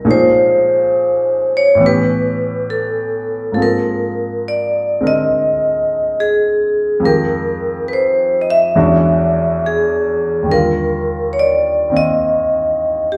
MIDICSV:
0, 0, Header, 1, 3, 480
1, 0, Start_track
1, 0, Key_signature, -3, "major"
1, 0, Tempo, 873362
1, 26, Time_signature, 4, 2, 24, 8
1, 2906, Tempo, 865801
1, 7276, End_track
2, 0, Start_track
2, 0, Title_t, "Vibraphone"
2, 0, Program_c, 0, 11
2, 0, Note_on_c, 0, 70, 78
2, 56, Note_off_c, 0, 70, 0
2, 59, Note_on_c, 0, 72, 79
2, 862, Note_on_c, 0, 73, 79
2, 864, Note_off_c, 0, 72, 0
2, 1007, Note_off_c, 0, 73, 0
2, 1023, Note_on_c, 0, 71, 79
2, 1485, Note_on_c, 0, 69, 63
2, 1499, Note_off_c, 0, 71, 0
2, 1942, Note_off_c, 0, 69, 0
2, 1948, Note_on_c, 0, 69, 49
2, 1961, Note_off_c, 0, 69, 0
2, 1991, Note_on_c, 0, 70, 73
2, 2463, Note_off_c, 0, 70, 0
2, 2464, Note_on_c, 0, 74, 65
2, 2774, Note_off_c, 0, 74, 0
2, 2786, Note_on_c, 0, 75, 89
2, 3414, Note_on_c, 0, 68, 74
2, 3425, Note_off_c, 0, 75, 0
2, 3886, Note_on_c, 0, 70, 81
2, 3895, Note_off_c, 0, 68, 0
2, 4309, Note_off_c, 0, 70, 0
2, 4345, Note_on_c, 0, 71, 59
2, 4359, Note_off_c, 0, 71, 0
2, 4373, Note_on_c, 0, 72, 65
2, 4636, Note_off_c, 0, 72, 0
2, 4640, Note_on_c, 0, 75, 63
2, 4679, Note_off_c, 0, 75, 0
2, 4689, Note_on_c, 0, 76, 96
2, 5333, Note_on_c, 0, 68, 71
2, 5334, Note_off_c, 0, 76, 0
2, 5804, Note_on_c, 0, 70, 87
2, 5811, Note_off_c, 0, 68, 0
2, 6256, Note_on_c, 0, 73, 60
2, 6260, Note_off_c, 0, 70, 0
2, 6272, Note_off_c, 0, 73, 0
2, 6291, Note_on_c, 0, 74, 75
2, 6607, Note_off_c, 0, 74, 0
2, 6608, Note_on_c, 0, 75, 86
2, 7249, Note_on_c, 0, 67, 65
2, 7256, Note_off_c, 0, 75, 0
2, 7276, Note_off_c, 0, 67, 0
2, 7276, End_track
3, 0, Start_track
3, 0, Title_t, "Grand piano"
3, 0, Program_c, 1, 0
3, 0, Control_c, 1, 64, 127
3, 26, Note_on_c, 1, 46, 50
3, 31, Note_on_c, 1, 56, 40
3, 32, Note_on_c, 1, 53, 35
3, 33, Control_c, 1, 64, 0
3, 33, Note_on_c, 1, 58, 37
3, 35, Note_on_c, 1, 61, 41
3, 36, Note_on_c, 1, 63, 47
3, 134, Control_c, 1, 64, 127
3, 962, Note_on_c, 1, 45, 49
3, 975, Note_on_c, 1, 52, 45
3, 984, Note_off_c, 1, 46, 0
3, 986, Note_off_c, 1, 56, 0
3, 987, Note_off_c, 1, 53, 0
3, 987, Note_off_c, 1, 58, 0
3, 988, Note_off_c, 1, 61, 0
3, 989, Note_off_c, 1, 63, 0
3, 990, Control_c, 1, 64, 0
3, 993, Note_on_c, 1, 59, 47
3, 1005, Note_on_c, 1, 61, 39
3, 1021, Note_on_c, 1, 67, 49
3, 1094, Control_c, 1, 64, 127
3, 1936, Note_off_c, 1, 45, 0
3, 1936, Note_on_c, 1, 44, 34
3, 1943, Note_off_c, 1, 52, 0
3, 1945, Note_on_c, 1, 53, 33
3, 1948, Note_on_c, 1, 58, 31
3, 1952, Note_off_c, 1, 59, 0
3, 1953, Control_c, 1, 64, 0
3, 1957, Note_on_c, 1, 60, 30
3, 1958, Note_off_c, 1, 61, 0
3, 1962, Note_on_c, 1, 68, 36
3, 1966, Note_off_c, 1, 67, 0
3, 2060, Control_c, 1, 64, 127
3, 2743, Note_off_c, 1, 60, 0
3, 2751, Note_on_c, 1, 60, 32
3, 2752, Note_on_c, 1, 56, 35
3, 2761, Note_on_c, 1, 50, 33
3, 2767, Note_on_c, 1, 70, 39
3, 3855, Note_on_c, 1, 41, 45
3, 3857, Note_off_c, 1, 53, 0
3, 3862, Note_off_c, 1, 44, 0
3, 3864, Note_off_c, 1, 56, 0
3, 3865, Note_on_c, 1, 53, 36
3, 3868, Note_off_c, 1, 58, 0
3, 3870, Note_off_c, 1, 60, 0
3, 3872, Note_on_c, 1, 56, 37
3, 3874, Control_c, 1, 64, 0
3, 3875, Note_off_c, 1, 50, 0
3, 3875, Note_off_c, 1, 68, 0
3, 3878, Note_off_c, 1, 70, 0
3, 3878, Note_on_c, 1, 51, 40
3, 3886, Note_on_c, 1, 67, 42
3, 3973, Control_c, 1, 64, 127
3, 4820, Note_off_c, 1, 41, 0
3, 4821, Note_off_c, 1, 56, 0
3, 4825, Note_off_c, 1, 53, 0
3, 4827, Note_on_c, 1, 52, 45
3, 4829, Note_on_c, 1, 56, 46
3, 4830, Note_on_c, 1, 40, 46
3, 4832, Note_off_c, 1, 51, 0
3, 4833, Note_on_c, 1, 62, 50
3, 4834, Control_c, 1, 64, 0
3, 4834, Note_on_c, 1, 61, 46
3, 4836, Note_off_c, 1, 67, 0
3, 4839, Note_on_c, 1, 66, 51
3, 4916, Control_c, 1, 64, 127
3, 5754, Note_on_c, 1, 39, 38
3, 5767, Note_on_c, 1, 51, 37
3, 5783, Note_off_c, 1, 52, 0
3, 5784, Note_off_c, 1, 56, 0
3, 5785, Note_off_c, 1, 40, 0
3, 5786, Note_off_c, 1, 62, 0
3, 5786, Note_on_c, 1, 55, 38
3, 5787, Note_off_c, 1, 61, 0
3, 5789, Note_off_c, 1, 66, 0
3, 5791, Control_c, 1, 64, 0
3, 5796, Note_on_c, 1, 50, 34
3, 5812, Note_on_c, 1, 65, 46
3, 5897, Control_c, 1, 64, 127
3, 6562, Note_off_c, 1, 51, 0
3, 6571, Note_on_c, 1, 51, 38
3, 6581, Note_on_c, 1, 60, 34
3, 6587, Note_on_c, 1, 58, 38
3, 7276, Note_off_c, 1, 39, 0
3, 7276, Note_off_c, 1, 50, 0
3, 7276, Note_off_c, 1, 51, 0
3, 7276, Note_off_c, 1, 55, 0
3, 7276, Note_off_c, 1, 58, 0
3, 7276, Note_off_c, 1, 60, 0
3, 7276, Note_off_c, 1, 65, 0
3, 7276, End_track
0, 0, End_of_file